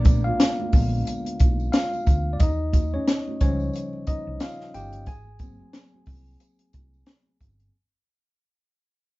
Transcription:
Already playing: A#1 D3 G#3 A#3 B3 D4 A#4 D5
0.04 kick, closed hi-hat, tambourine, high conga
0.24 F4 F5, high conga
0.40 snare, closed hi-hat, tambourine
0.60 muted conga, high conga
0.73 A#1 D3 G#3 B3, kick, open hi-hat, tambourine, low conga
1.05 closed hi-hat, tambourine, muted conga
1.25 closed hi-hat, muted conga
1.40 B1, kick, closed hi-hat, tambourine, high conga
1.60 tambourine
1.72 F4 F5, snare, closed hi-hat, tambourine
1.92 tambourine, muted conga
2.06 D2, kick, closed hi-hat, tambourine, low conga
2.33 D5
2.40 D#2 D#4 D#5, kick, closed hi-hat, tambourine, muted conga, low conga
2.73 kick, closed hi-hat, tambourine, high conga
2.93 C#4 C#5, high conga
3.07 snare, closed hi-hat, tambourine
3.28 muted conga, high conga
3.41 C#2 C#3 F3 G3 C#4 C5 C#5, kick, closed hi-hat, tambourine, low conga
3.60 tambourine
3.73 closed hi-hat, tambourine, muted conga
3.93 muted conga
4.07 D#4 D#5, muted fingered electric bass stroke, kick, closed hi-hat, tambourine, high conga
4.27 C2
4.40 F4 F5, snare, closed hi-hat, tambourine
4.60 snare
4.74 G1 G4 G5, closed hi-hat, tambourine, low conga
4.93 closed hi-hat, tambourine
5.06 G#1 G#4 G#5, kick, closed hi-hat, tambourine, muted conga, low conga
5.25 muted conga
5.39 F#3 A#3 C4, kick, closed hi-hat, tambourine, high conga
5.59 high conga
5.73 snare, closed hi-hat, tambourine
5.94 high conga
6.06 C2, kick, open hi-hat, tambourine, low conga
6.27 tambourine
6.40 closed hi-hat, tambourine, muted conga
6.59 closed hi-hat, muted conga
6.73 C2, kick, closed hi-hat, tambourine, high conga
6.94 tambourine
7.06 snare, closed hi-hat, tambourine, muted conga
7.26 muted conga
7.40 G1, kick, closed hi-hat, tambourine, low conga
7.60 closed hi-hat, tambourine

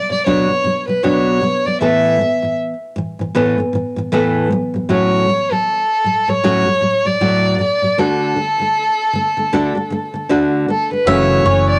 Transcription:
Already playing: F#3 D5
0.10 B2 F#3 D5
0.26 B2 F#3 B3 D4 F#4 C#5
0.49 B2 F#3
0.64 B2 F#3
0.88 B2 F#3 B4
1.03 B2 F#3 B3 D4 F#4 C#5
1.42 B2 F#3
1.65 B2 F#3 D5
1.81 A2 E3 A3 B3 A4 E5
2.19 A2 E3
2.42 A2 E3
2.96 A2 E3
3.19 A2 E3
3.35 A2 E3 A3 B3 A4
3.58 A2 E3
3.73 A2 E3
3.96 A2 E3
4.12 A2 E3 A3 B3 A4
4.51 A2 F#3
4.74 A2 F#3
4.89 A2 F#3 A3 C#4 F#4 C#5
5.27 A2 F#3
5.51 A2 F#3 A4
6.04 A2 F#3
6.28 A2 F#3 C#5
6.44 A2 F#3 A3 C#4 F#4
6.66 A2 F#3
6.81 A2 F#3
7.05 A2 F#3 D5
7.21 A2 F#3 A3 F#4
7.59 A2 F#3 D5
7.82 A2 F#3
7.98 D3 A3 D4 F#4 A4
8.36 D3 A3
8.59 D3 A3
9.13 D3 A3
9.37 D3 A3
9.53 D3 A3 D4 F#4
9.75 D3 A3
9.90 D3 A3
10.14 D3 A3
10.29 D3 A3 D4 F#4
10.68 D3 A3 A4
10.91 D3 A3 B4
11.05 F#1 F#2 C#3 E3 A3 C#4 F#4 A4 C#5 E5
11.45 F#1 E3 A3 C#4 F#4 C#5
11.70 D5

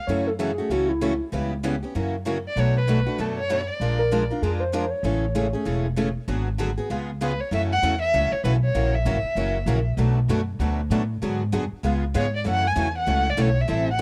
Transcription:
0.07 F#2 C#3 E3 F#3 A3 C#4 E4 F#4 A4 C#5
0.27 A4
0.39 C#3 E3 F#3 A3 C#4 E4 F#4 G#4 A4
0.58 A3 C#4 F#4
0.70 C#2 C#3 E3 F#3 A3 C#4 E4 F#4 A4
0.89 E4
1.01 C#3 E3 F#3 A3 C#4 E4 F#4 A4
1.32 C#2 C#3 E3 G3 B3 C#4 E4 G4 B4
1.64 C#3 E3 G3 B3 C#4 E4 G4 B4
1.83 B3 C#4 G4
1.95 F#2 C#3 E3 F#3 A#3 C#4 E4 F#4 A#4
2.25 C#3 E3 F#3 A#3 C#4 E4 F#4 A#4
2.48 D5
2.56 B1 B2 F#3 A3 D4 F#4 B4 C#5
2.78 B4
2.88 B2 F#3 A3 D4 F#4 B4
3.06 A3 D4 F#4
3.18 F#2 B2 F#3 A3 D4 F#4 A4 B4
3.40 C#5
3.50 B2 F#3 A3 D4 F#4 B4
3.70 D5
3.80 A#1 F3 G#3 D4 F4 A#4
3.99 A#4
4.12 F3 G#3 D4 F4 A#4
4.31 D4 F4 A#4
4.42 F2 F3 G#3 D4 F4 G#4 A#4
4.60 C5
4.73 F3 G#3 D4 F4 A#4
4.90 C#5
5.03 A1 C#3 E3 G#3 A3 C#4 E4 G#4 A4
5.35 C#3 E3 G#3 A3 C#4 E4 G#4 A4
5.53 A3 C#4 G#4
5.65 E1 C#3 E3 G#3 A3 C#4 E4 G#4 A4
5.96 C#3 E3 G#3 A3 C#4 E4 G#4 A4
6.28 G#1 D3 F#3 B3 F#4 G#4
6.58 D3 F#3 B3 F#4 G#4
6.78 B3 F#4 G#4
6.90 C#2 C#3 G#3 B3 F4 G#4
7.21 C#3 G#3 B3 F4 G#4 B4
7.40 C#5
7.51 F#2 C#3 E3 F#3 A3 C#4 E4 F#4 A4 E5
7.72 F#5
7.82 E2 C#3 E3 F#3 A3 C#4 E4 F#4 A4
8.02 E5
8.13 C#2 C#3 E3 F#3 A3 C#4 E4 F#4 A4
8.32 C#5, muted upright bass stroke
8.44 B1 C#3 E3 F#3 A3 C#4 E4 F#4 A4 B4
8.65 C#5
8.74 A#1 C#3 E3 F#3 A#3 C#4 E4 F#4 A#4
8.95 E5
9.05 G#1 C#3 E3 F#3 A#3 C#4 E4 F#4 A#4
9.23 muted upright bass stroke
9.35 F#1 C#3 E3 F#3 A#3 C#4 E4 F#4 A#4
9.66 A#1 C#3 E3 F#3 A#3 C#4 E4 F#4 A#4
9.97 B1 B2 F#3 A3 D4 F#4 B4
10.28 F#2 B2 F#3 A3 D4 F#4 B4
10.59 D2 B2 F#3 A3 D4 F#4 B4
10.90 A2 B2 F#3 A3 D4 F#4 B4
11.22 G#2 D3 F#3 B3 F#4 G#4
11.52 F#2 D3 F#3 B3 F#4 G#4
11.72 muted upright bass stroke
11.83 C#2 C#3 G#3 B3 F4 G#4
12.14 G#2 C#3 G#3 B3 F4 G#4 C#5
12.36 D5
12.44 F#2 C#3 E3 F#3 A3 C#4 E4 F#4 A4
12.49 F#5
12.67 G#5
12.76 E2 C#3 E3 F#3 A3 C#4 E4 F#4 A4
12.98 F#5
13.06 C#2 C#3 E3 F#3 A3 C#4 E4 F#4 A4
13.30 D5
13.37 B1 C#3 E3 F#3 A3 C#4 E4 F#4 A4
13.41 C#5
13.61 E5
13.68 A1 E3 G3 C4 E4 A4
13.91 F#5

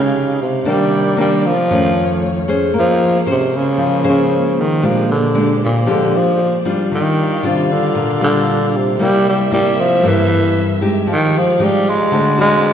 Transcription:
Already playing: C3 C#3 G#3 D#4 G4 F5
0.42 C3
0.65 C3 D#3 G3 A#3 C4 D4 A#4 D5
1.17 D#3 A#3 D4
1.21 G3
1.46 F3
1.70 F2 D#3 A3 C#4 F4 C#5
2.48 C#4 G#4 C5
2.74 G#3 A#3 C#4 C5
2.79 F3
3.26 C#4 G#4 C5
3.31 C3
3.57 C#3
3.78 F3
4.04 C#4 G#4 C5
4.09 C#3
4.60 D#3
4.82 A#2 F3 G#3 D4 G4 C5 D5
5.11 D3
5.35 G#3 D4 G4
5.64 A#2
5.86 D3 F3 G#3 D4 G4
6.17 F3
6.65 G3 D4 F4
6.91 D#3 F4 G4 F5
7.43 C3 G3 D4 F4
7.72 D3
7.95 A#2
8.21 D3 G3 D4 F4
8.76 C3
8.99 C3 G3 A#3 C4 E4 A#4 E5
9.29 G3
9.51 G3 A#3 E4
9.80 F3
10.03 G2 G3 A#3 E4
10.07 E3
10.81 G#3 D#4 G4
11.07 F3 D#4 G4 F5
11.12 D#3
11.38 F3
11.59 G#3 D#4 G4
11.63 G3
11.89 G#3
12.12 D3 A3 C4 F#4 D5
12.38 G#3 C4 F#4

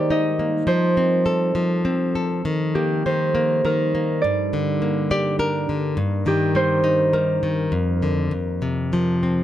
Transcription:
Already playing: D#3 G3 A#3 D#4 G4 G#4 A#4 C5 D5
0.10 D#4 D#5
0.39 A#3
0.67 F3 C4 A4 C5
0.97 C4
1.26 A4
1.55 F3
1.85 C4
2.15 A4
2.44 D#3 G3 D#4 A#4
2.75 A#3 G4
3.06 D#3 C5
3.35 A#3
3.65 D#3 A#4
3.95 A#3
4.22 G2 D4 D5
4.53 D3
4.82 A#3
5.11 G4 D5
5.39 D4 A#4
5.69 D3
5.97 G2 D#3 C4
6.26 D#3 G4
6.55 G3 C5
6.84 D#4
7.13 G3 A#4
7.43 D#3
7.72 F2
8.03 D3
8.31 F2
8.62 C3
8.93 F3
9.23 C4

